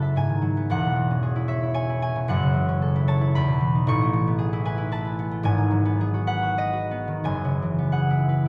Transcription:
0.00 0.18 F#1 medium
0.00 0.19 F#2 medium
0.00 0.18 C#3 medium
0.00 0.41 F#3 medium
0.00 0.18 A3 medium
0.00 0.18 E4 medium
0.00 0.71 F#4 medium
0.00 0.18 A4 medium
0.00 0.18 E5 medium
0.00 0.18 A5 medium
0.00 0.46 B5 loud
0.16 0.72 G#2 medium
0.16 1.73 G#5 medium
0.29 0.72 D#3 soft
0.42 0.71 F#3 medium
0.57 2.30 B3 medium
0.70 2.30 E1 medium
0.70 2.30 E2 medium
0.70 2.05 F#5 loud
0.85 2.14 B2 medium
0.96 2.30 E3 medium
1.11 2.02 C#4 medium
1.23 2.30 G#4 medium
1.36 1.61 E4 medium
1.48 1.73 C#5 medium
1.48 5.38 E5 loud
1.63 1.88 E4 medium
1.74 3.07 C#5 medium
1.74 2.01 G#5 loud
1.89 2.94 E4 medium
2.02 2.67 C#4 medium
2.02 2.30 G#5 loud
2.16 2.30 B2 medium
2.28 3.36 F#1 medium
2.28 3.37 F#2 medium
2.28 3.37 F#5 loud
2.43 3.37 C#3 medium
2.54 3.36 E3 medium
2.69 3.37 C#4 medium
2.82 3.37 A4 medium
2.96 3.20 E4 medium
3.08 3.36 C#5 medium
3.08 3.36 A5 loud
3.21 4.52 E4 medium
3.35 3.89 E2 medium
3.35 7.25 B5 loud
3.48 3.89 B2 medium
3.61 3.88 E3 medium
3.75 3.89 D#4 medium
3.87 5.47 A1 medium
3.87 5.48 A2 medium
3.87 5.48 C#6 loud
4.02 5.30 A3 medium
4.13 5.47 E3 medium
4.27 5.18 B3 medium
4.38 5.99 G#4 medium
4.53 4.77 E4 medium
4.65 4.90 B4 medium
4.65 5.44 G#5 loud
4.78 5.04 E4 medium
4.92 6.26 B4 medium
4.92 5.47 A5 loud
5.05 5.47 E4 medium
5.19 5.84 B3 medium
5.31 5.47 A3 medium
5.43 7.30 G#1 medium
5.43 7.30 G#2 medium
5.43 7.23 G#5 loud
5.58 7.06 D#3 medium
5.71 8.48 F#3 medium
5.85 6.90 B3 medium
6.01 7.92 G#4 medium
6.14 6.41 F#4 medium
6.27 6.57 B4 medium
6.27 7.91 F#5 loud
6.42 6.72 F#4 medium
6.57 8.28 B4 medium
6.57 7.30 D#5 loud
6.73 8.48 F#4 medium
6.91 7.77 B3 medium
7.08 7.29 D#3 medium
7.24 8.48 F#1 medium
7.24 8.48 F#2 medium
7.24 8.40 G#5 loud
7.45 8.48 C#3 medium
7.62 8.48 E3 medium
7.78 8.48 B3 medium
7.92 8.48 G#4 medium
7.92 8.48 F#5 medium
8.10 8.44 E4 medium
8.29 8.48 B4 medium

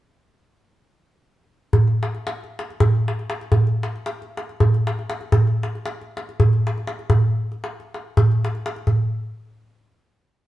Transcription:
1.73 darbuka dum medium
1.88 darbuka tek soft
2.03 darbuka tek medium
2.15 darbuka tek soft
2.27 darbuka tek medium
2.44 darbuka tek soft
2.59 darbuka tek medium
2.70 darbuka tek soft
2.80 darbuka dum loud
2.95 darbuka tek soft
3.08 darbuka tek medium
3.19 darbuka tek soft
3.30 darbuka tek medium
3.41 darbuka tek soft
3.52 darbuka dum medium
3.67 darbuka tek soft
3.83 darbuka tek medium
3.96 darbuka tek soft
4.06 darbuka tek medium
4.22 darbuka tek soft
4.37 darbuka tek medium
4.49 darbuka tek soft
4.60 darbuka dum medium
4.74 darbuka tek soft
4.87 darbuka tek medium
4.99 darbuka tek soft
5.10 darbuka tek medium
5.21 darbuka tek soft
5.32 darbuka dum loud
5.47 darbuka tek soft
5.63 darbuka tek medium
5.75 darbuka tek soft
5.86 darbuka tek medium
6.01 darbuka tek soft
6.17 darbuka tek medium
6.29 darbuka tek soft
6.40 darbuka dum loud
6.53 darbuka tek soft
6.67 darbuka tek medium
6.78 darbuka tek soft
6.87 darbuka tek medium
6.99 darbuka tek soft
7.10 darbuka dum loud
7.52 darbuka tek soft
7.64 darbuka tek medium
7.80 darbuka tek soft
7.94 darbuka tek medium
8.17 darbuka dum medium
8.32 darbuka tek soft
8.45 darbuka tek medium
8.55 darbuka tek soft
8.66 darbuka tek medium
8.76 darbuka tek soft
8.87 darbuka dum medium

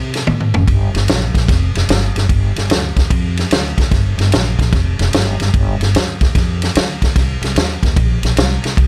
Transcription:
0.00 0.21 C3 medium
0.14 snare soft
0.14 ride medium
0.27 0.50 A2 medium
0.27 high tom medium
0.40 mid tom medium
0.54 0.66 F#1 medium
0.54 floor tom loud
0.68 0.90 G1 medium
0.68 kick loud
0.68 ride medium
0.94 1.06 G1 medium
0.94 snare soft
0.94 ride medium
1.08 1.30 A#1 medium
1.08 snare loud
1.08 ride medium
1.35 1.46 A#1 medium
1.35 kick medium
1.35 snare soft
1.35 ride medium
1.48 1.71 F1 medium
1.48 kick loud
1.48 snare soft
1.48 ride medium
1.75 1.87 F1 medium
1.75 snare soft
1.75 ride medium
1.89 2.11 G1 medium
1.89 snare loud
1.89 ride medium
2.15 2.27 G1 medium
2.15 snare soft
2.15 ride medium
2.29 2.52 G1 medium
2.29 kick loud
2.29 ride medium
2.56 2.68 G1 medium
2.56 snare soft
2.56 ride medium
2.70 2.93 D2 medium
2.70 snare loud
2.70 ride medium
2.96 3.08 D2 medium
2.96 kick medium
2.96 snare soft
2.96 ride medium
3.10 3.45 F2 loud
3.10 kick loud
3.10 ride medium
3.37 snare soft
3.37 ride medium
3.51 3.73 D2 medium
3.51 snare loud
3.51 ride medium
3.78 3.89 D2 medium
3.78 kick medium
3.78 snare soft
3.78 ride medium
3.91 4.14 G1 medium
3.91 kick loud
3.91 snare soft
3.91 ride medium
4.18 4.30 G1 medium
4.18 snare soft
4.18 ride medium
4.32 4.54 A#1 medium
4.32 snare loud
4.32 ride medium
4.59 4.71 A#1 medium
4.59 kick medium
4.59 snare soft
4.59 ride medium
4.73 4.95 F1 medium
4.73 kick loud
4.73 snare soft
4.73 ride medium
4.99 5.11 F1 medium
4.99 snare soft
4.99 ride medium
5.13 5.36 G1 medium
5.13 snare loud
5.13 ride medium
5.40 5.52 G1 medium
5.40 snare soft
5.40 ride medium
5.54 5.76 G1 medium
5.54 kick loud
5.54 ride medium
5.80 5.92 G1 medium
5.80 snare soft
5.80 ride medium
5.94 6.16 D2 medium
5.94 snare loud
5.94 ride medium
6.21 6.33 D2 medium
6.21 kick medium
6.21 snare soft
6.21 ride medium
6.35 6.69 F2 medium
6.35 kick loud
6.35 snare soft
6.35 ride medium
6.62 snare soft
6.62 ride medium
6.75 6.97 D2 medium
6.75 snare loud
6.75 ride medium
7.02 7.14 D2 medium
7.02 kick medium
7.02 snare soft
7.02 ride medium
7.16 7.38 C2 medium
7.16 kick loud
7.16 snare soft
7.16 ride medium
7.42 7.53 C2 medium
7.42 snare soft
7.42 ride medium
7.55 7.78 D#2 medium
7.55 snare loud
7.55 ride medium
7.83 7.94 D#2 medium
7.83 kick medium
7.83 snare soft
7.83 ride medium
7.96 8.19 A#1 medium
7.96 kick loud
7.96 ride medium
8.23 8.34 A#1 medium
8.23 snare soft
8.23 ride medium
8.36 8.59 C2 medium
8.36 snare loud
8.36 ride medium
8.63 8.75 C2 medium
8.63 snare soft
8.63 ride medium
8.77 8.87 C2 medium
8.77 kick loud
8.77 ride medium

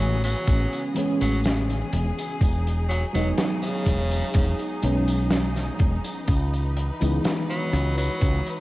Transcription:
0.00 0.34 A1 medium
0.00 2.37 C#3 medium
0.00 0.89 E3 loud
0.00 0.19 F#3 loud
0.00 0.90 G#3 medium
0.00 0.90 B3 medium
0.00 2.37 B3 medium
0.00 0.91 C#4 loud
0.00 6.24 G#4 medium
0.24 0.82 F#3 loud
0.24 closed hi-hat medium
0.24 tambourine medium
0.47 0.65 A1 loud
0.47 kick loud
0.47 closed hi-hat medium
0.47 tambourine soft
0.73 closed hi-hat medium
0.73 tambourine soft
0.94 2.37 E3 loud
0.94 2.38 G#3 medium
0.94 2.38 B3 medium
0.94 2.39 C#4 loud
0.94 closed hi-hat loud
1.21 1.82 A1 medium
1.21 1.40 F#3 medium
1.21 closed hi-hat medium
1.21 tambourine medium
1.44 snare loud
1.44 closed hi-hat medium
1.44 tambourine medium
1.70 closed hi-hat medium
1.70 tambourine soft
1.93 2.10 E1 medium
1.93 closed hi-hat loud
2.18 closed hi-hat medium
2.18 tambourine medium
2.40 3.03 E1 loud
2.40 6.24 F#3 medium
2.40 8.17 D#4 medium
2.40 kick loud
2.40 closed hi-hat medium
2.40 tambourine soft
2.67 closed hi-hat medium
2.67 tambourine soft
2.89 3.05 F#3 medium
2.89 closed hi-hat loud
3.13 3.31 E1 medium
3.13 4.76 F#3 loud
3.13 3.29 F#3 medium
3.13 4.77 G#3 medium
3.13 4.77 B3 medium
3.13 4.78 D#4 loud
3.13 closed hi-hat medium
3.13 tambourine medium
3.38 snare loud
3.38 closed hi-hat medium
3.38 tambourine soft
3.62 4.59 C#3 loud
3.62 closed hi-hat medium
3.62 tambourine soft
3.86 4.21 E1 loud
3.86 kick medium
3.86 closed hi-hat medium
4.11 closed hi-hat medium
4.11 tambourine medium
4.34 4.52 E1 loud
4.34 kick loud
4.34 closed hi-hat loud
4.34 tambourine soft
4.59 closed hi-hat medium
4.59 tambourine soft
4.82 5.69 B1 medium
4.82 6.25 F#3 loud
4.82 6.25 G#3 medium
4.82 6.25 B3 medium
4.82 6.26 C#4 loud
4.82 closed hi-hat medium
5.08 closed hi-hat medium
5.08 tambourine medium
5.30 snare loud
5.30 closed hi-hat medium
5.30 tambourine soft
5.56 snare soft
5.56 closed hi-hat soft
5.56 tambourine soft
5.79 5.97 E1 medium
5.79 kick loud
5.79 closed hi-hat medium
6.04 closed hi-hat medium
6.04 tambourine medium
6.28 6.90 C#2 loud
6.28 8.60 E3 medium
6.28 8.60 B4 medium
6.28 kick loud
6.28 closed hi-hat medium
6.28 tambourine soft
6.54 closed hi-hat medium
6.54 tambourine soft
6.77 closed hi-hat medium
7.00 7.18 C#2 loud
7.00 8.60 E3 loud
7.00 8.60 G#3 medium
7.00 8.60 B3 medium
7.00 8.60 D#4 loud
7.00 closed hi-hat medium
7.00 tambourine soft
7.24 snare loud
7.24 closed hi-hat medium
7.24 tambourine soft
7.50 7.93 F#3 loud
7.50 closed hi-hat medium
7.50 tambourine soft
7.73 8.08 C#2 loud
7.73 closed hi-hat medium
7.98 8.56 F#3 loud
7.98 closed hi-hat medium
7.98 tambourine medium
8.21 8.39 C#2 loud
8.21 8.60 D#4 medium
8.21 kick loud
8.21 closed hi-hat medium
8.21 tambourine soft
8.47 closed hi-hat medium
8.47 tambourine soft

